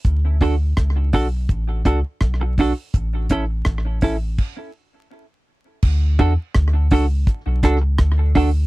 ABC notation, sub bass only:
X:1
M:4/4
L:1/16
Q:1/4=83
K:D
V:1 name="Sub bass" clef=bass
D,,4 C,,2 B,,,2 A,,,2 C,, z B,,,3 z | A,,,4 A,,,2 A,,,2 z8 | D,,2 E,, z D,,2 C,,2 z B,,, C,,2 D,,4 |]